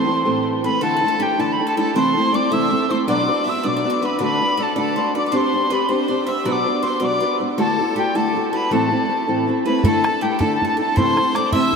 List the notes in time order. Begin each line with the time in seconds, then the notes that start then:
Already playing: E3 C5 C6
0.06 A3 C4 A4 B4
0.25 A2 E3 A3 C4 A4 B4
0.64 A3 C4 A4 B4 B5
0.81 D3 E3 A3 D4 E4 A4 A5
0.97 A4
1.01 A3 D4 E4 A4
1.08 A4
1.19 A3 D4 E4 G4 A4 G5
1.38 D3 E3 A3 D4 E4 A4 A5
1.52 B5
1.59 A3 D4 E4 A4
1.66 A4 A5
1.77 A3 D4 E4 A4 A5
1.94 C3 E3 A3 C4 E4 A4 C5 C6
2.15 A3 C4 E4 A4 C5
2.32 A3 C4 E4 A4 D5 D6
2.51 C3 E3 A3 C4 E4 A4 E5 E6
2.70 A3 C4 E4 A4
2.89 A3 C4 E4 A4 C5 C6
3.07 B2 F#3 B3 D4 F#4 B4 D5 D6
3.28 B3 D4 F#4 B4
3.44 B3 D4 F#4 E5
3.49 B4 E6
3.63 B2 F#3 B3 D4 F#4 B4 D5 D6
3.77 D5
3.84 B3 D4 F#4 B4
3.90 D5
4.01 B3 D4 F#4 B4 B5
4.19 D3 A3 D4 F#4 B4 D5 B5
4.40 D4 F#4 D5
4.57 A3 D4 F#4 A4 D5
4.62 A5
4.76 D3 A3 D4 F#4 A4 D5 A5
4.96 A3 D4 F#4 C5 D5
5.14 D4 F#4 D5 D6
5.26 D5 D6
5.32 C4 D4 G4 C5
5.36 C6
5.53 D4 G4 C5
5.70 C4 D4 G4 B4 C5 B5
5.89 C4 D4 G4 C5 C6
6.08 C4 D4 G4 C5 D5
6.27 D4 G4 C5 E5 E6
6.45 B2 F#3 B3 D4 F#4 B4 D5 E6
6.52 D6
6.66 B3 D4 F#4 B4
6.83 B3 D4 F#4 B4 C5
6.87 C6
7.00 B2 F#3 B3 D4 F#4 B4 D5
7.04 D6
7.20 B3 D4 F#4 B4
7.40 B3 D4 F#4 B4
7.57 D3 A3 E4 F#4 A4 A5
7.79 E4 F#4 A4
7.95 A3 E4 F#4 G4 A4 G5
8.15 D3 A3 E4 F#4 A4 A5
8.34 A3 E4 F#4 A4
8.52 E4 F#4 A4 B4 B5
8.71 A2 E3 A3 C4 E4 A4 A5
8.90 A3 C4 E4 A4
9.09 A3 C4 E4 A4
9.27 A2 E3 A3 C4 E4 A4
9.47 A3 C4 E4 A4
9.65 A3 C4 E4 A4 B4 B5
9.78 B4
9.83 D3 A3 D4 E4 A4 B5, bodhran
9.87 A5
10.04 D4 E4 A4, bodhran
10.21 A3 D4 E4 G4 A4 G5
10.39 D3 A3 D4 E4 A4 A5, bodhran
10.55 A5
10.60 A3 D4 E4 A4, bodhran
10.65 A4 A5
10.77 D4 E4 A4 A5
10.96 C3 E3 A3 C4 E4 A4 C5 C6, bodhran
11.17 A3 C4 E4 A4, bodhran
11.35 A3 C4 E4 A4 D5 D6, bodhran
11.52 C3 E3 A3 C4 E4 A4 E5 E6, bodhran